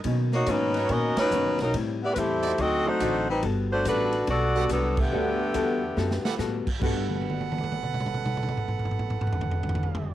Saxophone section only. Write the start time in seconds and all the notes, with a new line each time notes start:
0.34 A#3 D#4 F#4 C#5
0.49 F#3 C#4 D#4 B4
0.91 C#4 F#4 A#4 D#5
1.19 F#3 C#4 D#4 B4
1.61 F#3 C#4 D#4 A#4
2.04 B3 E4 G4 D5
2.14 B4
2.18 A3 E4 G4 C5
2.61 C4 F#4 A4 D#5
2.88 A3 D#4 F#4 C5
3.30 G3 C4 D#4 B4
3.72 A3 D4 F#4 C5
3.88 A3 D4 F#4 B4
4.30 B3 F#4 A4 D5
4.72 F#3 B3 D4 A4
5.00 D3 A3 B3 G4